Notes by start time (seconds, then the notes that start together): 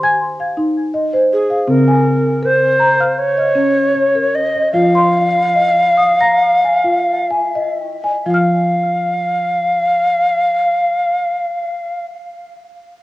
Already playing: D#3 C6
0.03 G#5 G#6
0.40 F5
0.57 D#4
0.94 D#5
1.13 C5
1.33 G#4
1.50 F5
1.67 C#3 C4 A#4
1.88 G#5
2.43 A#4 C5
2.79 A#5
3.00 F5 F6
3.19 C#5
3.37 D#5
3.55 C#4
3.94 C#5
4.15 A#4
4.35 D#5
4.55 D#5
4.73 F3 F4 F5
4.95 C6
5.56 D#5
5.97 D#6
6.21 A#5 A#6
6.64 G#5
6.84 F4
7.31 G#5
7.55 D#5
8.04 G#5
8.26 F3 F4 F5
8.30 F5 F6